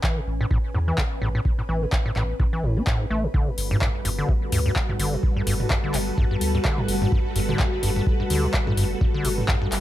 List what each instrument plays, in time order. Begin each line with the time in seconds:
Already playing: ambient pad C#4 B4 G#5
0.03 acid bass E3, kick, clap
0.17 acid bass C#3
0.27 sub bass A1
0.41 acid bass A2
0.51 acid bass A2, kick
0.74 sub bass E2, acid bass A2
0.88 acid bass E3
0.98 acid bass C#3, kick, clap
1.22 sub bass A1, acid bass A2
1.35 acid bass A2
1.45 kick
1.59 acid bass A2
1.69 sub bass A1, acid bass E3
1.82 acid bass C#3
1.92 kick, clap
2.06 acid bass A2
2.16 sub bass A1, acid bass A2, clap
2.40 acid bass A2, kick
2.53 acid bass E3
2.63 sub bass A1, acid bass A2
2.77 acid bass C#4
2.87 acid bass A2, kick, clap
3.00 acid bass G#2
3.10 sub bass A1, acid bass A3
3.24 acid bass A2
3.34 acid bass D3, string machine G3 F#4 A4 B4, ambient pad F#4, kick
3.47 acid bass B2
3.58 sub bass G1, open hi-hat
3.71 acid bass G2, mid tom
3.81 acid bass G2, kick, clap
4.05 sub bass G1, acid bass G2, open hi-hat
4.18 acid bass D3
4.23 ambient pad A5
4.29 acid bass B2, kick
4.52 sub bass D2, acid bass G2, open hi-hat
4.66 acid bass G2
4.76 kick, clap
4.89 acid bass G2, mid tom
4.99 sub bass G1, acid bass D3, open hi-hat
5.13 acid bass B2
5.23 kick
5.37 acid bass G2
5.47 sub bass G1, acid bass G2, open hi-hat
5.60 mid tom
5.70 acid bass G2, kick, clap
5.84 acid bass D3
5.94 sub bass G1, acid bass B2, clap, open hi-hat
6.18 acid bass G2, kick
6.31 acid bass G2
6.41 sub bass D2, open hi-hat
6.55 acid bass G2
6.65 acid bass D3, kick, clap
6.78 acid bass B2, mid tom
6.88 sub bass G1, open hi-hat
7.02 acid bass G2, mid tom
7.12 acid bass G2, kick
7.36 sub bass G1, acid bass G2, open hi-hat
7.49 acid bass D3, mid tom
7.59 acid bass B2, kick, clap
7.83 sub bass G1, acid bass G2, open hi-hat
7.96 acid bass G2
8.07 kick
8.20 acid bass G2
8.30 sub bass D2, acid bass D3, open hi-hat
8.44 acid bass B2
8.54 kick, clap
8.67 acid bass G2, mid tom
8.77 sub bass G1, acid bass G2, open hi-hat
9.01 acid bass G2, kick
9.14 acid bass D3
9.25 sub bass G1, acid bass B2, open hi-hat
9.38 mid tom
9.48 acid bass G2, kick, clap
9.62 acid bass G2
9.72 sub bass G1, clap, open hi-hat